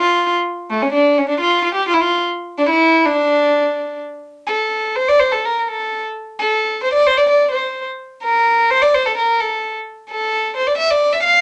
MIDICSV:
0, 0, Header, 1, 2, 480
1, 0, Start_track
1, 0, Tempo, 471698
1, 465, Time_signature, 2, 2, 24, 8
1, 7184, Tempo, 465116
1, 11676, End_track
2, 0, Start_track
2, 0, Title_t, "Violin"
2, 0, Program_c, 0, 40
2, 0, Note_on_c, 0, 65, 94
2, 319, Note_off_c, 0, 65, 0
2, 715, Note_on_c, 0, 57, 80
2, 836, Note_on_c, 0, 61, 82
2, 851, Note_off_c, 0, 57, 0
2, 942, Note_off_c, 0, 61, 0
2, 948, Note_on_c, 0, 62, 82
2, 1200, Note_on_c, 0, 61, 77
2, 1215, Note_off_c, 0, 62, 0
2, 1304, Note_off_c, 0, 61, 0
2, 1311, Note_on_c, 0, 62, 83
2, 1420, Note_off_c, 0, 62, 0
2, 1435, Note_on_c, 0, 65, 95
2, 1655, Note_off_c, 0, 65, 0
2, 1667, Note_on_c, 0, 65, 75
2, 1764, Note_off_c, 0, 65, 0
2, 1771, Note_on_c, 0, 67, 87
2, 1890, Note_off_c, 0, 67, 0
2, 1910, Note_on_c, 0, 65, 93
2, 1970, Note_on_c, 0, 64, 71
2, 1985, Note_off_c, 0, 65, 0
2, 2043, Note_on_c, 0, 65, 91
2, 2059, Note_off_c, 0, 64, 0
2, 2259, Note_off_c, 0, 65, 0
2, 2626, Note_on_c, 0, 62, 89
2, 2738, Note_off_c, 0, 62, 0
2, 2744, Note_on_c, 0, 64, 93
2, 3110, Note_on_c, 0, 62, 100
2, 3125, Note_off_c, 0, 64, 0
2, 4069, Note_off_c, 0, 62, 0
2, 4548, Note_on_c, 0, 69, 74
2, 5044, Note_on_c, 0, 72, 86
2, 5060, Note_off_c, 0, 69, 0
2, 5173, Note_on_c, 0, 74, 100
2, 5188, Note_off_c, 0, 72, 0
2, 5287, Note_on_c, 0, 72, 94
2, 5302, Note_off_c, 0, 74, 0
2, 5413, Note_on_c, 0, 69, 84
2, 5428, Note_off_c, 0, 72, 0
2, 5546, Note_on_c, 0, 70, 83
2, 5561, Note_off_c, 0, 69, 0
2, 5687, Note_off_c, 0, 70, 0
2, 5687, Note_on_c, 0, 70, 52
2, 5776, Note_on_c, 0, 69, 79
2, 5791, Note_off_c, 0, 70, 0
2, 6121, Note_off_c, 0, 69, 0
2, 6503, Note_on_c, 0, 69, 80
2, 6930, Note_off_c, 0, 69, 0
2, 6951, Note_on_c, 0, 72, 85
2, 7051, Note_off_c, 0, 72, 0
2, 7057, Note_on_c, 0, 74, 94
2, 7191, Note_on_c, 0, 72, 105
2, 7206, Note_off_c, 0, 74, 0
2, 7302, Note_on_c, 0, 74, 94
2, 7317, Note_off_c, 0, 72, 0
2, 7423, Note_off_c, 0, 74, 0
2, 7429, Note_on_c, 0, 74, 84
2, 7646, Note_off_c, 0, 74, 0
2, 7652, Note_on_c, 0, 72, 66
2, 7996, Note_off_c, 0, 72, 0
2, 8387, Note_on_c, 0, 70, 84
2, 8879, Note_on_c, 0, 72, 97
2, 8894, Note_off_c, 0, 70, 0
2, 8998, Note_on_c, 0, 74, 90
2, 9014, Note_off_c, 0, 72, 0
2, 9126, Note_on_c, 0, 72, 90
2, 9142, Note_off_c, 0, 74, 0
2, 9244, Note_on_c, 0, 69, 88
2, 9260, Note_off_c, 0, 72, 0
2, 9359, Note_off_c, 0, 69, 0
2, 9374, Note_on_c, 0, 70, 73
2, 9602, Note_on_c, 0, 69, 67
2, 9618, Note_off_c, 0, 70, 0
2, 9957, Note_off_c, 0, 69, 0
2, 10326, Note_on_c, 0, 69, 82
2, 10763, Note_off_c, 0, 69, 0
2, 10799, Note_on_c, 0, 72, 83
2, 10908, Note_on_c, 0, 74, 87
2, 10924, Note_off_c, 0, 72, 0
2, 11012, Note_off_c, 0, 74, 0
2, 11018, Note_on_c, 0, 76, 93
2, 11152, Note_on_c, 0, 74, 95
2, 11167, Note_off_c, 0, 76, 0
2, 11379, Note_on_c, 0, 76, 84
2, 11394, Note_off_c, 0, 74, 0
2, 11486, Note_off_c, 0, 76, 0
2, 11492, Note_on_c, 0, 77, 88
2, 11676, Note_off_c, 0, 77, 0
2, 11676, End_track
0, 0, End_of_file